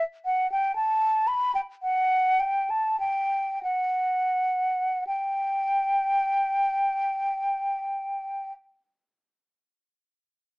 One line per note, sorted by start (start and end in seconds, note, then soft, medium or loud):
0.25 0.50 F#5 medium
0.52 0.75 G5 medium
0.76 1.29 A5 medium
1.28 1.54 B5 medium
1.55 1.61 G5 medium
1.83 2.41 F#5 medium
2.40 2.72 G5 medium
2.70 2.99 A5 medium
3.00 3.62 G5 medium
3.63 5.04 F#5 medium
5.07 8.52 G5 medium